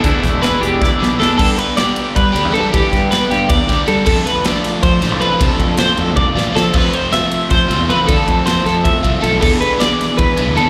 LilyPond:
<<
  \new Staff \with { instrumentName = "Clean electric guitar" } { \time 7/8 \key g \mixolydian \tempo 4 = 157 r4 b'8 g'8 d''4 a'8 | a'8 b'8 d''4 b'4 a'8 | g'4 b'8 g'8 d''4 a'8 | a'8 b'8 d''4 c''4 b'8 |
a'4 c''8 a'8 d''4 a'8 | b'8 c''8 e''4 c''4 b'8 | a'4 c''8 a'8 e''4 a'8 | a'8 b'8 d''4 b'4 a'8 | }
  \new Staff \with { instrumentName = "Overdriven electric guitar" } { \time 7/8 \key g \mixolydian <e b d' aes'>4 <e b d' aes'>4. <b d' aes'>8 <e b d' aes'>8 | <g b d' g'>4 <g b d' g'>4. <b d' g'>8 <g b d' g'>8 | <g b d' g'>4 <g b d' g'>4. <b d' g'>8 <g b d' g'>8 | <f a d' f'>4 <f a d' f'>4. <a d' f'>8 <f a d' f'>8 |
<f a d' f'>4 <f a d' f'>4. <a d' f'>8 <f a d' f'>8 | <f a c' f'>4 <f a c' f'>4. <a c' f'>8 <f a c' f'>8 | <f a c' f'>4 <f a c' f'>4. <a c' f'>8 <f a c' f'>8 | <e b d' aes'>4 <e b d' aes'>4. <b d' aes'>8 <e b d' aes'>8 | }
  \new Staff \with { instrumentName = "Clean electric guitar" } { \time 7/8 \key g \mixolydian << { <a d' e'>8 a4 d'8 e'4 d'8 | r2. r8 | r2. r8 | r2. r8 |
r2. r8 | r2. r8 | r2. r8 | r2. r8 | } \\ { e,4 e4. b,4 | r2. r8 | r2. r8 | r2. r8 |
r2. r8 | r2. r8 | r2. r8 | r2. r8 | } >> }
  \new Staff \with { instrumentName = "Fingered electric bass" } { \clef bass \time 7/8 \key g \mixolydian d,16 r16 e,,4 e,,8 d,16 r16 b,,16 r16 e,8 | g,8 r4. g8 d,16 e,16 g,16 g16 | e16 r16 g,4 g,8 e,16 r16 d,16 r16 g8 | f,8 r4. f8 a,,16 c,16 f,16 f16 |
c16 r16 f,4 f,8 c,16 r16 a,,16 r16 f8 | f,8 r4. f8 c,16 e,16 f,16 f16 | d16 r16 f,4 f,8 e,16 r16 c,16 r16 b,,8 | e,8 r4. e8 b,,16 d,16 e,16 e16 | }
  \new DrumStaff \with { instrumentName = "Drums" } \drummode { \time 7/8 <hh bd>8 <hh bd sn>8 <hh sn>8 hh8 <bd sn>8 sn8 sn8 | <cymc bd>8 cymr8 <cymr sn>8 cymr8 <bd cymr>8 cymr8 cymr8 | <bd cymr>8 <bd cymr sn>8 <cymr sn>8 <cymr sn>8 <bd cymr>8 <bd cymr sn>8 cymr8 | <cymc bd>8 <cymr sn>8 <cymr sn>8 <cymr sn>8 <bd cymr sn>8 <cymr sn>8 cymr8 |
<bd cymr>8 <bd cymr>8 <cymr sn>8 cymr8 <bd tommh>8 sn8 sn8 | <cymc bd>8 cymr8 <cymr sn>8 cymr8 <bd cymr sn>8 cymr8 cymr8 | <bd cymr>8 <bd cymr>8 <cymr sn>8 <cymr sn>8 <bd cymr>8 <bd cymr>8 cymr8 | <cymc bd>8 cymr8 <cymr sn>8 <cymr sn>8 <bd cymr>8 cymr8 cymr8 | }
>>